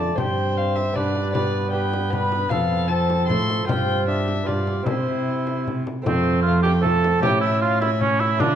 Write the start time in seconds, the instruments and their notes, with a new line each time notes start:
Already playing: lute F2 A3 D4 F4, cello F2, bassoon A3, cor anglais D5, violin A5
0.15 cello G2, lute G2 C4 D4 G4, bassoon C4, cor anglais C5, violin G5, frame drum
0.58 bassoon C4, violin F5
0.76 violin E5, frame drum
0.93 cello G2, lute G2 B3 D4 G4, bassoon D4, cor anglais B4, violin D5, frame drum
1.16 frame drum
1.32 lute B3 D4 G4, bassoon B3, cor anglais B4, violin D5, frame drum
1.71 lute B3 D4 G4, cor anglais B4, violin G5
1.93 frame drum
2.10 lute B3 D4 G4, bassoon B3, violin B5, frame drum
2.14 cor anglais B4
2.32 frame drum
2.49 cello F2, lute F2 C4 F4 A4, cor anglais A4, violin F5, frame drum
2.88 lute C4 F4 A4, bassoon C4, cor anglais A4, violin A5
3.10 frame drum
3.26 lute A2 C4 F4 A4, cello A2, cor anglais A4, violin C6, frame drum
3.31 bassoon A3
3.50 frame drum
3.65 cello G2, lute G2 C4 F4 G4, bassoon C4, cor anglais F4, violin G5, frame drum
4.08 bassoon D4, violin E5
4.28 frame drum
4.43 lute G2 B3 F4 G4, cello G2, cor anglais F4, violin D5
4.49 frame drum
4.67 frame drum
4.83 cello C3, lute C3 C4 E4 G4, cor anglais E4, bassoon E4, violin C5, frame drum
5.47 frame drum
5.67 frame drum
5.87 frame drum
6.02 cello F2, lute F2 A3 C4 F4, bassoon A3
6.06 cor anglais C4, violin C5, frame drum
6.43 bassoon A3, cor anglais F4, violin F5
6.63 cor anglais G4, violin G5, frame drum
6.80 lute A3 C4 F4, bassoon A3, cor anglais A4
6.85 violin A5, frame drum
7.04 frame drum
7.19 cello A2, lute A2 A3 C#4 E4, bassoon C#4, cor anglais G4, frame drum
7.24 violin G5
7.41 cor anglais E4, violin E5
7.62 cor anglais F4, violin F5
7.81 cor anglais E4, violin E5, frame drum
8.01 bassoon C#4, cor anglais C#4, violin C#5, frame drum
8.19 cor anglais E4, violin E5, frame drum
8.37 cello D3, lute D3 A3 D4 F4, cor anglais D4, violin D5, frame drum
8.41 bassoon D4